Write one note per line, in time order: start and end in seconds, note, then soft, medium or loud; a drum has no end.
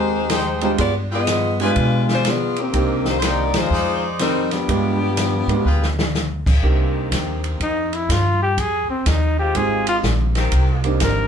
0.00 0.75 D#2 medium
0.00 0.27 G#3 medium
0.00 0.58 G#3 medium
0.00 0.27 A#3 medium
0.00 0.27 C4 medium
0.00 0.27 D#4 medium
0.00 0.58 D#4 medium
0.00 0.28 G4 medium
0.00 0.58 G4 medium
0.00 0.58 C5 loud
0.30 0.79 D#4 medium
0.30 0.79 G#4 medium
0.30 0.79 C5 medium
0.30 0.79 G5 loud
0.30 snare medium
0.30 hi-hat pedal medium
0.30 ride medium
0.61 0.77 G#3 medium
0.61 0.70 G#3 medium
0.61 0.77 B3 medium
0.61 0.77 D4 medium
0.61 0.70 D#4 medium
0.61 0.77 F4 medium
0.61 0.77 G4 medium
0.61 0.71 G4 medium
0.61 0.70 C5 medium
0.61 ride soft
0.78 1.72 G2 medium
0.78 0.94 B3 medium
0.78 0.94 F4 medium
0.78 0.93 G#4 medium
0.78 0.94 D5 loud
0.78 kick soft
0.78 ride medium
1.10 1.57 B3 medium
1.10 1.22 F4 medium
1.10 1.57 F4 medium
1.10 1.22 G#4 medium
1.10 1.57 G#4 medium
1.10 1.22 B4 medium
1.10 1.57 D#5 medium
1.10 1.22 G5 medium
1.27 snare medium
1.27 hi-hat pedal medium
1.27 ride medium
1.60 2.22 G#3 medium
1.60 2.06 G#3 medium
1.60 2.22 B3 medium
1.60 2.22 D4 medium
1.60 2.06 D4 medium
1.60 1.71 F4 medium
1.60 2.22 F4 medium
1.60 2.06 F4 medium
1.60 2.22 G4 medium
1.60 1.71 G#4 medium
1.60 1.71 B4 medium
1.60 2.06 B4 medium
1.60 1.71 G#5 medium
1.60 ride soft
1.76 2.69 B2 medium
1.76 kick soft
1.76 ride medium
2.09 2.27 G#3 medium
2.09 2.27 D4 medium
2.09 2.26 F4 medium
2.09 2.26 C5 medium
2.09 snare medium
2.25 2.58 F4 medium
2.25 2.59 G#4 medium
2.25 2.59 D5 medium
2.25 snare medium
2.25 hi-hat pedal medium
2.25 ride medium
2.29 2.59 B3 medium
2.56 3.07 D#3 medium
2.56 3.07 A#3 medium
2.56 3.07 C4 medium
2.56 3.07 G4 medium
2.56 ride soft
2.73 3.50 C2 medium
2.73 3.71 A#3 medium
2.73 3.71 C4 medium
2.73 3.71 D4 medium
2.73 3.71 D#4 medium
2.73 3.71 G4 medium
2.73 kick soft
2.73 ride medium
3.05 3.19 A#3 medium
3.05 3.19 D#4 medium
3.05 3.19 G4 medium
3.05 3.18 C5 medium
3.05 snare medium
3.19 3.44 D#4 medium
3.19 3.44 A#4 medium
3.19 3.23 C5 medium
3.19 3.44 C5 medium
3.19 3.44 G5 medium
3.19 snare medium
3.19 hi-hat pedal medium
3.19 ride medium
3.25 3.55 A#3 medium
3.25 3.56 D#4 medium
3.25 3.56 G4 medium
3.25 3.56 D5 medium
3.54 3.69 D#2 medium
3.54 4.05 G#3 medium
3.54 4.05 D#4 medium
3.54 4.04 F4 medium
3.54 4.04 C5 medium
3.54 snare medium
3.54 ride medium
3.70 4.64 F2 medium
3.70 4.45 D#4 medium
3.70 4.45 G#4 medium
3.70 4.45 C5 medium
3.70 4.45 D5 loud
4.19 4.50 G3 medium
4.19 4.50 C4 medium
4.19 4.50 D#4 medium
4.19 4.50 A#4 medium
4.19 snare medium
4.19 hi-hat pedal medium
4.19 ride medium
4.51 6.11 F3 medium
4.51 6.11 B3 medium
4.51 6.11 D4 medium
4.51 6.11 G4 medium
4.51 snare soft
4.51 ride soft
4.68 5.45 G2 medium
4.68 4.97 G#3 medium
4.68 4.97 B3 medium
4.68 4.97 D4 medium
4.68 4.97 F4 medium
4.68 4.98 G4 medium
4.68 kick soft
4.68 ride medium
5.17 snare medium
5.17 hi-hat pedal medium
5.17 ride medium
5.47 5.64 G#2 medium
5.47 5.64 G#3 medium
5.47 5.64 B3 medium
5.47 5.64 D4 medium
5.47 5.64 F4 medium
5.47 5.64 G4 medium
5.47 ride soft
5.65 6.42 D2 medium
5.65 5.87 F4 medium
5.65 5.87 G#4 medium
5.65 5.87 B4 medium
5.65 5.87 G5 medium
5.83 snare medium
5.99 snare medium
6.15 snare medium
6.15 hi-hat pedal medium
6.46 6.62 C#2 medium
6.46 kick medium
6.46 crash medium
6.62 7.10 C2 medium
6.62 7.99 D#3 medium
6.62 7.99 A#3 medium
6.62 7.98 C4 medium
6.62 7.99 C4 medium
6.62 7.99 D4 medium
6.62 7.99 D#4 medium
6.62 7.98 G4 medium
6.62 7.99 G4 medium
6.62 kick soft
7.11 7.59 D#2 medium
7.11 kick soft
7.11 snare medium
7.11 hi-hat pedal medium
7.11 ride medium
7.44 ride soft
7.60 8.07 F2 medium
7.60 7.96 D#4 medium
7.60 kick soft
7.60 ride medium
7.93 8.13 E4 medium
7.93 ride soft
8.09 8.56 G2 medium
8.09 8.42 F4 medium
8.09 kick soft
8.09 snare medium
8.09 hi-hat pedal medium
8.09 ride medium
8.42 8.61 G4 medium
8.57 8.87 F2 medium
8.57 8.89 G#4 medium
8.57 kick soft
8.57 ride medium
8.88 9.09 C4 medium
8.88 muted upright bass stroke soft
9.06 9.53 D#2 medium
9.06 9.39 D#4 medium
9.06 kick soft
9.06 snare medium
9.06 hi-hat pedal medium
9.06 ride medium
9.38 10.00 D#3 medium
9.38 10.00 G#3 medium
9.38 10.00 C4 medium
9.38 10.00 F4 loud
9.38 9.58 G4 medium
9.55 10.02 G#1 medium
9.55 10.29 G#3 medium
9.55 10.29 C4 soft
9.55 10.29 D#4 medium
9.55 10.29 F4 soft
9.55 10.29 G4 medium
9.55 9.88 G#4 loud
9.55 kick soft
9.55 ride medium
9.87 9.98 F4 medium
9.87 ride medium
10.03 10.50 A#1 medium
10.03 kick soft
10.03 snare medium
10.03 hi-hat pedal medium
10.35 10.97 D#3 loud
10.35 10.97 A#3 medium
10.35 10.97 C4 medium
10.35 10.97 G4 loud
10.35 snare medium
10.35 ride soft
10.52 10.99 C2 medium
10.52 kick soft
10.52 ride medium
10.84 11.28 A#3 medium
10.84 11.28 C4 medium
10.84 11.28 D4 medium
10.84 11.28 D#4 medium
10.84 11.28 G4 medium
10.84 ride soft
11.00 11.28 G#1 medium
11.00 11.28 A#4 medium
11.00 kick soft
11.00 snare medium
11.00 hi-hat pedal medium
11.00 ride medium